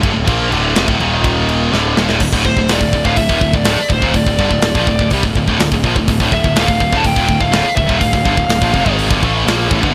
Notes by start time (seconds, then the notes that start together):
0.00 G1 G2 D3, kick
0.04 D3, crash
0.12 D1 D2 A2
0.16 D2 A2
0.28 A#1 A#2 F3 A#3, kick, crash
0.52 D1 D2 A2 D3, crash
0.76 F1 F2 C3, snare, crash
0.87 D1 D2 A2, kick
1.00 D#1 D#2 A#2 D#3, crash
1.24 kick, crash
1.49 crash
1.72 D1 D2 A2 D3, snare
1.97 D#1 D#2 A#2, snare
2.09 D1 D2 A2, snare
2.20 D1 D2 A2, kick, crash
2.32 D1 D2 A2, kick
2.45 D1 D2 A2 C5, kick
2.56 D1 D2 A2, kick
2.69 D#1 D#2 A#2 D5, snare, open hi-hat
2.80 D1 D2 A2, kick
2.93 D1 D2 A2, kick
3.04 D1 D2 A2 F5, kick
3.16 D1 D2 A2 E5, kick, open hi-hat
3.29 D#1 D#2 A#2, kick
3.41 D1 D2 A2, kick
3.53 D1 D2 A2 D5, kick
3.65 D1 D2 A2, snare, open hi-hat
3.77 muted distorted electric guitar stroke, muted picked electric bass stroke
3.89 D1 D2 A2 C5, kick
4.02 D#1 D#2 A#2, kick
4.14 D1 D2 A2 D5, kick, open hi-hat
4.26 D1 D2 A2, kick
4.38 G1 G2 D3, kick
4.51 D1 D2 A2, kick
4.62 D1 D2, snare, open hi-hat
4.66 A2
4.75 A#1 A#2 F3, kick
4.87 D1 D2 A2, kick
4.99 D1 D2 A2, kick
5.10 C2 C3 G3, kick, open hi-hat
5.23 D1 D2 A2, kick
5.35 D1 D2 A2, kick
5.48 D1 D2 A2, kick
5.60 D1 D2 A2, snare, open hi-hat
5.72 D1 D2 A2, kick
5.83 A#1 A#2 F3, kick
5.96 D1 D2 A2, kick
6.08 D1 D2 A2, kick, open hi-hat
6.20 D1 D2 A2, kick
6.32 D1 D2 A2 E5, kick
6.44 D1 D2 A2, kick
6.56 D#1 D#2 A#2, snare, open hi-hat
6.60 F5
6.68 D1 D2 A2, kick
6.80 D1 D2 A2, kick
6.93 D1 D2 A2, kick
6.97 A5
7.04 D1 D2 A2 G5, kick, open hi-hat
7.16 D#1 D#2 A#2, kick
7.28 D1 D2 A2, kick
7.40 D1 D2 A2 F5, kick
7.52 D1 D2 A2, snare, open hi-hat
7.65 muted picked electric bass stroke, muted distorted electric guitar stroke
7.76 D1 D2 A2 E5, kick
7.89 D#1 D#2 A#2, kick
8.00 D1 D2 A2 F5, kick, open hi-hat
8.13 D1 D2 A2, kick
8.25 G1 G2 D3, kick
8.37 D1 D2 A2, kick
8.49 D1 D2 A2, snare, open hi-hat
8.62 A#1 A#2 F3, kick
8.74 F1 F2 C3, kick
8.84 G#1 G#2 D#3, kick
8.89 D#3 G#3
8.99 open hi-hat
9.11 G1 G2 D3, kick
9.19 A1 A2 E3 A3, kick
9.23 A2 E3 A3
9.45 A#1 A#2 F3 A#3, snare, open hi-hat
9.50 A#3
9.67 A1 A2 E3, kick
9.71 A2 E3
9.80 G1 G2 D3, kick
9.84 G2 D3